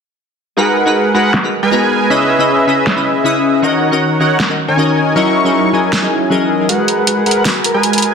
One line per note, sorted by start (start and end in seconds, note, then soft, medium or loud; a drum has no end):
0.57 0.84 G#3 medium
0.57 1.13 G#3 medium
0.57 0.84 D#4 medium
0.57 0.84 F#4 medium
0.57 1.13 G#4 medium
0.57 1.13 A#4 medium
0.57 0.84 A#4 medium
0.57 1.13 B4 medium
0.57 0.85 B4 loud
0.57 1.13 F#5 medium
0.86 0.91 G#3 medium
0.86 0.91 D#4 medium
0.86 0.91 F#4 medium
0.86 0.91 A#4 medium
0.86 0.92 B4 loud
1.14 1.19 G#3 medium
1.14 1.31 G#3 loud
1.14 1.20 D#4 medium
1.14 1.20 F#4 medium
1.14 1.31 G#4 medium
1.14 1.31 A#4 medium
1.14 1.20 A#4 medium
1.14 1.31 B4 medium
1.14 1.20 B4 medium
1.14 1.31 F#5 loud
1.34 snare loud
1.43 1.48 G#3 medium
1.43 1.48 D#4 medium
1.43 1.48 F#4 medium
1.43 1.49 A#4 medium
1.43 1.49 B4 medium
1.63 2.08 G#3 medium
1.63 2.08 G#4 medium
1.63 2.08 A#4 medium
1.63 2.08 B4 medium
1.63 2.08 G#5 medium
1.71 2.08 G#3 medium
1.71 2.09 B3 loud
1.71 2.08 D#4 medium
1.71 2.08 F#4 medium
1.71 2.08 A#5 medium
2.09 2.37 C#3 medium
2.09 2.37 C#4 medium
2.09 2.65 C#4 loud
2.09 2.37 E4 medium
2.09 2.65 G#4 medium
2.09 2.65 B4 medium
2.09 2.37 B4 medium
2.09 2.65 D#5 medium
2.09 2.38 D#5 loud
2.09 2.65 E5 loud
2.38 2.43 C#3 medium
2.38 2.44 C#4 medium
2.38 2.44 E4 medium
2.38 2.44 B4 medium
2.38 2.44 D#5 loud
2.67 2.72 C#3 medium
2.67 2.72 C#4 medium
2.67 3.61 C#4 medium
2.67 2.73 E4 medium
2.67 3.61 G#4 medium
2.67 3.61 B4 medium
2.67 2.73 B4 medium
2.67 3.61 D#5 medium
2.67 2.73 D#5 medium
2.67 3.61 E5 medium
2.87 snare loud
2.96 3.01 C#3 medium
2.96 3.01 C#4 medium
2.96 3.01 E4 medium
2.96 3.01 B4 medium
2.96 3.02 D#5 medium
3.24 3.60 C#3 medium
3.24 3.61 C#4 medium
3.24 3.61 E4 medium
3.24 3.61 B4 medium
3.24 3.61 D#6 loud
3.62 3.89 D#3 medium
3.62 4.18 D#3 medium
3.62 3.89 C#4 medium
3.62 4.18 D#4 medium
3.62 3.90 F#4 medium
3.62 4.18 A#4 medium
3.62 3.90 A#4 medium
3.62 4.18 C#5 medium
3.62 3.90 D#5 loud
3.62 4.18 F#5 medium
3.91 3.96 D#3 medium
3.91 3.96 C#4 medium
3.91 3.97 F#4 medium
3.91 3.97 A#4 medium
3.91 3.97 D#5 loud
4.19 4.25 D#3 medium
4.19 4.37 D#3 medium
4.19 4.25 C#4 medium
4.19 4.37 D#4 medium
4.19 4.25 F#4 medium
4.19 4.37 A#4 medium
4.19 4.26 A#4 medium
4.19 4.37 C#5 medium
4.19 4.26 D#5 medium
4.19 4.37 F#5 loud
4.40 snare loud
4.49 4.54 D#3 medium
4.49 4.54 C#4 medium
4.49 4.54 F#4 medium
4.49 4.54 A#4 medium
4.49 4.55 D#5 medium
4.68 5.14 D#3 medium
4.68 5.14 D#4 medium
4.68 5.14 A#4 medium
4.68 5.14 C#5 medium
4.68 5.14 G#5 medium
4.77 5.13 D#3 medium
4.77 5.14 C#4 medium
4.77 5.14 F#4 medium
4.77 5.14 A#4 medium
4.77 5.14 D#5 loud
5.15 5.42 F#3 medium
5.15 5.71 F#3 loud
5.15 5.42 C#4 medium
5.15 5.71 C#4 medium
5.15 5.71 D#4 medium
5.15 5.71 E4 medium
5.15 5.43 E4 medium
5.15 5.43 G#4 medium
5.15 5.71 A#4 medium
5.15 5.43 A#4 medium
5.15 5.43 D#5 loud
5.15 5.71 C#6 loud
5.44 5.49 F#3 medium
5.44 5.49 C#4 medium
5.44 5.50 E4 medium
5.44 5.50 G#4 medium
5.44 5.50 A#4 medium
5.44 5.50 D#5 loud
5.73 5.78 F#3 medium
5.73 6.67 F#3 medium
5.73 5.78 C#4 medium
5.73 6.67 C#4 medium
5.73 6.67 D#4 medium
5.73 6.67 E4 medium
5.73 5.78 E4 medium
5.73 5.79 G#4 medium
5.73 6.67 A#4 medium
5.73 5.79 A#4 medium
5.73 5.79 D#5 medium
5.73 6.67 G#5 medium
5.93 snare loud
6.02 6.07 F#3 medium
6.02 6.07 C#4 medium
6.02 6.07 E4 medium
6.02 6.07 G#4 medium
6.02 6.07 A#4 medium
6.02 6.08 D#5 medium
6.30 6.67 E3 medium
6.30 6.66 F#3 medium
6.30 6.67 C#4 medium
6.30 6.67 G#4 medium
6.30 6.67 A#4 medium
6.30 6.67 D#5 loud
6.69 7.24 G#3 medium
6.69 7.07 F#4 loud
6.69 7.24 G#4 medium
6.69 7.24 A#4 medium
6.69 7.24 B4 medium
6.69 7.24 F#5 medium
6.69 closed hi-hat medium
6.79 7.17 G#4 loud
6.88 7.04 A#4 medium
6.88 closed hi-hat medium
6.98 7.32 B4 medium
7.07 7.45 F#4 medium
7.07 closed hi-hat medium
7.17 7.55 G#4 loud
7.26 7.43 G#3 loud
7.26 7.43 G#4 medium
7.26 7.42 A#4 medium
7.26 7.43 A#4 medium
7.26 7.43 B4 medium
7.26 7.43 F#5 loud
7.26 closed hi-hat soft
7.31 closed hi-hat medium
7.36 7.70 B4 loud
7.45 7.83 F#4 medium
7.45 snare loud
7.45 closed hi-hat medium
7.55 7.93 G#4 loud
7.64 7.80 A#4 medium
7.64 closed hi-hat medium
7.74 8.14 G#3 medium
7.74 8.14 G#4 medium
7.74 8.14 A#4 medium
7.74 8.14 B4 medium
7.74 8.09 B4 medium
7.74 8.14 G#5 medium
7.83 8.14 F#4 medium
7.83 closed hi-hat medium
7.93 8.14 G#4 loud
7.93 closed hi-hat soft
7.98 closed hi-hat medium
8.02 8.14 A#4 medium
8.02 closed hi-hat medium